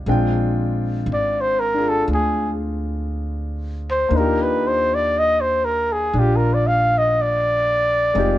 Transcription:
0, 0, Header, 1, 4, 480
1, 0, Start_track
1, 0, Key_signature, -3, "major"
1, 0, Tempo, 1010101
1, 31, Time_signature, 4, 2, 24, 8
1, 3984, End_track
2, 0, Start_track
2, 0, Title_t, "Trumpet"
2, 0, Program_c, 0, 56
2, 538, Note_on_c, 0, 74, 72
2, 668, Note_on_c, 0, 72, 74
2, 675, Note_off_c, 0, 74, 0
2, 757, Note_on_c, 0, 70, 79
2, 765, Note_off_c, 0, 72, 0
2, 896, Note_on_c, 0, 69, 74
2, 903, Note_off_c, 0, 70, 0
2, 983, Note_off_c, 0, 69, 0
2, 1015, Note_on_c, 0, 68, 66
2, 1199, Note_off_c, 0, 68, 0
2, 1855, Note_on_c, 0, 72, 75
2, 1979, Note_on_c, 0, 70, 67
2, 1986, Note_off_c, 0, 72, 0
2, 2101, Note_on_c, 0, 71, 74
2, 2109, Note_off_c, 0, 70, 0
2, 2220, Note_on_c, 0, 72, 78
2, 2227, Note_off_c, 0, 71, 0
2, 2350, Note_on_c, 0, 74, 84
2, 2357, Note_off_c, 0, 72, 0
2, 2464, Note_on_c, 0, 75, 83
2, 2471, Note_off_c, 0, 74, 0
2, 2569, Note_on_c, 0, 72, 74
2, 2576, Note_off_c, 0, 75, 0
2, 2682, Note_on_c, 0, 70, 77
2, 2689, Note_off_c, 0, 72, 0
2, 2813, Note_on_c, 0, 68, 68
2, 2820, Note_off_c, 0, 70, 0
2, 2941, Note_on_c, 0, 67, 61
2, 2948, Note_off_c, 0, 68, 0
2, 3023, Note_on_c, 0, 70, 73
2, 3030, Note_off_c, 0, 67, 0
2, 3107, Note_on_c, 0, 74, 74
2, 3115, Note_off_c, 0, 70, 0
2, 3169, Note_on_c, 0, 77, 94
2, 3177, Note_off_c, 0, 74, 0
2, 3316, Note_on_c, 0, 75, 76
2, 3323, Note_off_c, 0, 77, 0
2, 3428, Note_on_c, 0, 74, 90
2, 3435, Note_off_c, 0, 75, 0
2, 3984, Note_off_c, 0, 74, 0
2, 3984, End_track
3, 0, Start_track
3, 0, Title_t, "Grand piano"
3, 0, Program_c, 1, 0
3, 0, Control_c, 1, 64, 127
3, 35, Note_on_c, 1, 56, 49
3, 38, Control_c, 1, 64, 0
3, 39, Note_on_c, 1, 60, 42
3, 40, Note_on_c, 1, 62, 46
3, 41, Note_on_c, 1, 65, 48
3, 44, Note_on_c, 1, 79, 56
3, 112, Control_c, 1, 64, 127
3, 821, Note_off_c, 1, 62, 0
3, 828, Note_on_c, 1, 62, 38
3, 834, Note_off_c, 1, 65, 0
3, 841, Note_on_c, 1, 65, 36
3, 846, Note_on_c, 1, 68, 45
3, 1942, Note_on_c, 1, 58, 45
3, 1949, Note_off_c, 1, 62, 0
3, 1956, Note_on_c, 1, 62, 40
3, 1959, Note_off_c, 1, 56, 0
3, 1961, Note_off_c, 1, 60, 0
3, 1964, Note_off_c, 1, 65, 0
3, 1964, Note_off_c, 1, 79, 0
3, 1964, Control_c, 1, 64, 0
3, 1964, Note_on_c, 1, 63, 44
3, 1967, Note_off_c, 1, 68, 0
3, 1976, Note_on_c, 1, 65, 38
3, 1991, Note_on_c, 1, 67, 49
3, 2059, Control_c, 1, 64, 127
3, 2911, Note_off_c, 1, 62, 0
3, 2918, Note_on_c, 1, 62, 44
3, 2929, Note_off_c, 1, 65, 0
3, 2936, Note_on_c, 1, 65, 49
3, 3867, Note_on_c, 1, 56, 47
3, 3868, Note_off_c, 1, 58, 0
3, 3871, Note_off_c, 1, 63, 0
3, 3873, Note_on_c, 1, 60, 46
3, 3876, Note_off_c, 1, 62, 0
3, 3878, Note_off_c, 1, 65, 0
3, 3878, Note_on_c, 1, 63, 42
3, 3880, Control_c, 1, 64, 0
3, 3882, Note_off_c, 1, 67, 0
3, 3885, Note_on_c, 1, 65, 45
3, 3889, Note_on_c, 1, 67, 54
3, 3975, Control_c, 1, 64, 127
3, 3984, Note_off_c, 1, 56, 0
3, 3984, Note_off_c, 1, 60, 0
3, 3984, Note_off_c, 1, 63, 0
3, 3984, Note_off_c, 1, 65, 0
3, 3984, Note_off_c, 1, 67, 0
3, 3984, End_track
4, 0, Start_track
4, 0, Title_t, "Upright bass"
4, 0, Program_c, 2, 32
4, 30, Note_on_c, 2, 34, 73
4, 489, Note_off_c, 2, 34, 0
4, 504, Note_on_c, 2, 32, 69
4, 968, Note_off_c, 2, 32, 0
4, 986, Note_on_c, 2, 38, 70
4, 1937, Note_off_c, 2, 38, 0
4, 1950, Note_on_c, 2, 39, 71
4, 2896, Note_off_c, 2, 39, 0
4, 2915, Note_on_c, 2, 34, 69
4, 3855, Note_off_c, 2, 34, 0
4, 3873, Note_on_c, 2, 29, 71
4, 3984, Note_off_c, 2, 29, 0
4, 3984, End_track
0, 0, End_of_file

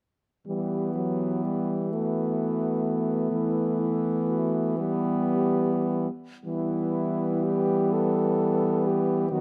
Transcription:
0, 0, Header, 1, 5, 480
1, 0, Start_track
1, 0, Key_signature, 1, "minor"
1, 0, Tempo, 975610
1, 232, Time_signature, 6, 3, 24, 8
1, 711, Tempo, 943396
1, 2151, Tempo, 1092896
1, 3111, Tempo, 967742
1, 4071, Tempo, 920245
1, 4598, End_track
2, 0, Start_track
2, 0, Title_t, "French horn"
2, 0, Program_c, 0, 60
2, 236, Note_on_c, 0, 67, 30
2, 957, Note_on_c, 0, 66, 33
2, 965, Note_off_c, 0, 67, 0
2, 1663, Note_off_c, 0, 66, 0
2, 1666, Note_on_c, 0, 64, 38
2, 1898, Note_off_c, 0, 64, 0
2, 1908, Note_on_c, 0, 64, 43
2, 2149, Note_off_c, 0, 64, 0
2, 2153, Note_on_c, 0, 66, 47
2, 2384, Note_on_c, 0, 67, 46
2, 2390, Note_off_c, 0, 66, 0
2, 2962, Note_off_c, 0, 67, 0
2, 3116, Note_on_c, 0, 64, 49
2, 3599, Note_on_c, 0, 67, 52
2, 3606, Note_off_c, 0, 64, 0
2, 3840, Note_on_c, 0, 69, 62
2, 3848, Note_off_c, 0, 67, 0
2, 4316, Note_on_c, 0, 67, 57
2, 4324, Note_off_c, 0, 69, 0
2, 4558, Note_on_c, 0, 66, 60
2, 4565, Note_off_c, 0, 67, 0
2, 4598, Note_off_c, 0, 66, 0
2, 4598, End_track
3, 0, Start_track
3, 0, Title_t, "French horn"
3, 0, Program_c, 1, 60
3, 232, Note_on_c, 1, 59, 32
3, 934, Note_off_c, 1, 59, 0
3, 960, Note_on_c, 1, 59, 37
3, 2364, Note_off_c, 1, 59, 0
3, 2376, Note_on_c, 1, 59, 45
3, 2946, Note_off_c, 1, 59, 0
3, 3110, Note_on_c, 1, 59, 38
3, 4530, Note_off_c, 1, 59, 0
3, 4545, Note_on_c, 1, 59, 44
3, 4598, Note_off_c, 1, 59, 0
3, 4598, End_track
4, 0, Start_track
4, 0, Title_t, "French horn"
4, 0, Program_c, 2, 60
4, 233, Note_on_c, 2, 55, 30
4, 456, Note_off_c, 2, 55, 0
4, 467, Note_on_c, 2, 54, 34
4, 710, Note_on_c, 2, 55, 31
4, 718, Note_off_c, 2, 54, 0
4, 955, Note_on_c, 2, 57, 38
4, 962, Note_off_c, 2, 55, 0
4, 2375, Note_off_c, 2, 57, 0
4, 2377, Note_on_c, 2, 55, 48
4, 2947, Note_off_c, 2, 55, 0
4, 3106, Note_on_c, 2, 55, 45
4, 4528, Note_off_c, 2, 55, 0
4, 4544, Note_on_c, 2, 54, 49
4, 4598, Note_off_c, 2, 54, 0
4, 4598, End_track
5, 0, Start_track
5, 0, Title_t, "French horn"
5, 0, Program_c, 3, 60
5, 234, Note_on_c, 3, 52, 34
5, 1644, Note_off_c, 3, 52, 0
5, 1662, Note_on_c, 3, 52, 41
5, 2942, Note_off_c, 3, 52, 0
5, 3111, Note_on_c, 3, 52, 41
5, 4531, Note_off_c, 3, 52, 0
5, 4552, Note_on_c, 3, 51, 51
5, 4598, Note_off_c, 3, 51, 0
5, 4598, End_track
0, 0, End_of_file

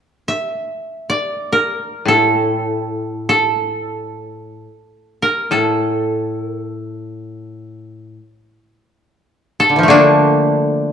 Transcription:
0, 0, Header, 1, 3, 480
1, 0, Start_track
1, 0, Tempo, 500000
1, 10487, End_track
2, 0, Start_track
2, 0, Title_t, "Koto"
2, 0, Program_c, 0, 107
2, 270, Note_on_c, 0, 76, 61
2, 1052, Note_on_c, 0, 74, 61
2, 1464, Note_on_c, 0, 70, 52
2, 1704, Note_off_c, 0, 76, 0
2, 2000, Note_on_c, 0, 69, 60
2, 2058, Note_off_c, 0, 70, 0
2, 2588, Note_off_c, 0, 74, 0
2, 3156, Note_off_c, 0, 69, 0
2, 3159, Note_on_c, 0, 69, 62
2, 4987, Note_off_c, 0, 69, 0
2, 5015, Note_on_c, 0, 70, 52
2, 5294, Note_on_c, 0, 69, 45
2, 5352, Note_off_c, 0, 70, 0
2, 6158, Note_off_c, 0, 69, 0
2, 6158, Note_on_c, 0, 70, 45
2, 6331, Note_off_c, 0, 70, 0
2, 6331, Note_on_c, 0, 69, 45
2, 6629, Note_off_c, 0, 69, 0
2, 6629, Note_on_c, 0, 70, 45
2, 6811, Note_off_c, 0, 70, 0
2, 6811, Note_on_c, 0, 69, 45
2, 7663, Note_off_c, 0, 69, 0
2, 9215, Note_on_c, 0, 69, 75
2, 9307, Note_on_c, 0, 50, 28
2, 9369, Note_on_c, 0, 52, 34
2, 9395, Note_on_c, 0, 53, 37
2, 9439, Note_on_c, 0, 57, 42
2, 9485, Note_on_c, 0, 58, 48
2, 9504, Note_on_c, 0, 62, 67
2, 9542, Note_off_c, 0, 52, 0
2, 9542, Note_off_c, 0, 69, 0
2, 10487, Note_off_c, 0, 50, 0
2, 10487, Note_off_c, 0, 53, 0
2, 10487, Note_off_c, 0, 57, 0
2, 10487, Note_off_c, 0, 58, 0
2, 10487, Note_off_c, 0, 62, 0
2, 10487, End_track
3, 0, Start_track
3, 0, Title_t, "Koto"
3, 0, Program_c, 1, 107
3, 1973, Note_on_c, 1, 45, 41
3, 4447, Note_off_c, 1, 45, 0
3, 5288, Note_on_c, 1, 45, 42
3, 7824, Note_off_c, 1, 45, 0
3, 9486, Note_on_c, 1, 50, 52
3, 10487, Note_off_c, 1, 50, 0
3, 10487, End_track
0, 0, End_of_file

